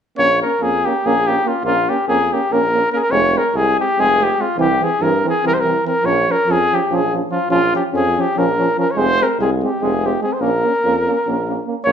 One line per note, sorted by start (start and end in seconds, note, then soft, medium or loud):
0.17 0.42 A#1 medium
0.17 0.27 A#3 soft
0.17 0.27 C#4 medium
0.17 0.40 C#5 loud
0.41 0.49 A#3 soft
0.41 0.51 C#4 soft
0.41 0.64 A#4 medium
0.61 0.85 F2 medium
0.61 0.70 A#3 medium
0.61 0.72 C#4 soft
0.61 0.87 G#4 medium
0.86 0.93 A#3 medium
0.86 0.94 C#4 medium
0.86 1.08 G4 medium
1.05 1.38 A#1 medium
1.05 1.14 A#3 medium
1.05 1.15 C#4 medium
1.05 1.29 G#4 loud
1.27 1.34 A#3 medium
1.27 1.35 C#4 medium
1.27 1.49 G4 medium
1.45 1.53 A#3 medium
1.45 1.54 C#4 soft
1.45 1.64 F4 medium
1.63 1.87 A#1 medium
1.63 1.74 A#3 medium
1.63 1.75 C#4 medium
1.63 1.91 F4 loud
1.88 1.97 A#3 soft
1.88 1.96 C#4 medium
1.88 2.07 G4 medium
2.07 2.31 F2 medium
2.07 2.18 A#3 medium
2.07 2.18 C#4 medium
2.07 2.34 G#4 medium
2.32 2.40 A#3 medium
2.32 2.40 C#4 medium
2.32 2.54 G4 medium
2.51 2.84 A#1 medium
2.51 2.60 A#3 medium
2.51 2.61 C#4 medium
2.51 2.92 A#4 medium
2.74 2.81 A#3 medium
2.74 2.81 C#4 medium
2.92 3.00 A#3 medium
2.92 3.00 C#4 soft
2.92 3.02 G#4 medium
2.92 2.97 A#4 medium
3.01 3.13 A#4 loud
3.10 3.35 F1 medium
3.10 3.20 G#3 medium
3.10 3.20 C4 medium
3.10 3.39 C#5 loud
3.35 3.42 G#3 medium
3.35 3.43 C4 soft
3.35 3.58 A#4 medium
3.54 3.78 C2 medium
3.54 3.65 G#3 medium
3.54 3.64 C4 medium
3.54 3.79 G#4 medium
3.78 3.86 G#3 medium
3.78 3.86 C4 medium
3.78 4.02 G4 medium
3.98 4.30 F1 medium
3.98 4.07 G#3 medium
3.98 4.06 C4 medium
3.98 4.25 G#4 loud
4.19 4.27 G#3 medium
4.19 4.27 C4 medium
4.23 4.43 G4 medium
4.39 4.46 G#3 medium
4.39 4.46 C4 medium
4.39 4.58 F4 medium
4.57 4.81 C2 medium
4.57 4.67 E3 medium
4.57 4.67 C4 medium
4.57 4.85 G4 medium
4.80 4.88 E3 medium
4.80 4.90 C4 soft
4.80 5.04 G#4 medium
5.00 5.24 G2 medium
5.00 5.10 E3 medium
5.00 5.11 C4 medium
5.00 5.25 A#4 loud
5.24 5.32 E3 medium
5.24 5.32 C4 medium
5.29 5.45 G#4 medium
5.44 5.77 C2 medium
5.44 5.53 E3 medium
5.44 5.53 C4 medium
5.44 5.55 A#4 loud
5.54 5.62 C5 medium
5.60 5.72 E3 soft
5.60 5.85 A#4 medium
5.67 5.74 C4 soft
5.84 5.91 E3 soft
5.84 5.94 C4 soft
5.84 6.07 A#4 medium
6.03 6.27 A#1 medium
6.03 6.12 F3 medium
6.03 6.14 C#4 medium
6.03 6.33 C#5 loud
6.28 6.35 F3 soft
6.28 6.36 C#4 soft
6.28 6.53 A#4 medium
6.46 6.70 F2 medium
6.46 6.56 F3 medium
6.46 6.57 C#4 medium
6.52 6.76 G#4 loud
6.71 6.79 F3 medium
6.71 6.80 C#4 medium
6.71 6.97 G4 medium
6.90 7.22 A#1 medium
6.90 6.99 F3 medium
6.90 7.00 C#4 medium
6.95 7.14 G#4 medium
7.12 7.20 F3 medium
7.12 7.20 C#4 medium
7.30 7.38 F3 medium
7.30 7.38 C#4 soft
7.30 7.49 F4 medium
7.49 7.73 A#1 medium
7.49 7.59 F3 medium
7.49 7.59 C#4 medium
7.49 7.72 F4 loud
7.73 7.81 F3 soft
7.73 7.81 C#4 medium
7.73 7.84 G4 medium
7.92 8.17 F2 medium
7.92 8.02 F3 medium
7.92 8.02 C#4 medium
7.92 8.22 G#4 medium
8.17 8.25 F3 medium
8.17 8.25 C#4 medium
8.17 8.40 G4 medium
8.37 8.69 A#1 medium
8.37 8.45 F3 medium
8.37 8.45 C#4 medium
8.37 8.78 A#4 loud
8.58 8.66 F3 medium
8.58 8.66 C#4 medium
8.77 8.85 F3 medium
8.77 8.85 C#4 medium
8.77 8.93 A#4 medium
8.91 8.99 C#5 medium
8.96 9.20 F1 medium
8.96 9.05 G#3 medium
8.96 9.07 C4 medium
8.96 9.24 C5 loud
9.20 9.27 G#3 medium
9.20 9.29 C4 medium
9.20 9.40 A#4 medium
9.39 9.63 C2 medium
9.39 9.49 G#3 medium
9.39 9.50 C4 medium
9.39 9.51 G#4 medium
9.63 9.70 G#3 medium
9.63 9.70 C4 medium
9.63 9.85 G4 medium
9.81 10.14 F1 medium
9.81 9.91 G#3 medium
9.81 9.90 C4 medium
9.81 10.08 G#4 medium
10.04 10.11 G#3 medium
10.04 10.12 C4 medium
10.04 10.22 G4 medium
10.21 10.29 G#3 medium
10.21 10.31 C4 soft
10.21 10.35 G#4 medium
10.33 10.42 C5 medium
10.40 10.64 A#1 medium
10.40 10.50 A#3 medium
10.40 10.50 C#4 medium
10.40 11.68 A#4 medium
10.64 10.72 A#3 soft
10.64 10.73 C#4 medium
10.84 11.08 F2 medium
10.84 10.94 A#3 medium
10.84 10.94 C#4 medium
11.07 11.16 A#3 medium
11.07 11.15 C#4 medium
11.26 11.59 A#1 medium
11.26 11.36 A#3 medium
11.26 11.35 C#4 medium
11.48 11.56 A#3 medium
11.48 11.56 C#4 soft
11.67 11.75 A#3 medium
11.67 11.75 C#4 soft
11.84 11.92 A#1 loud
11.84 11.92 A#3 medium
11.84 11.92 C#4 medium
11.84 11.92 C#5 loud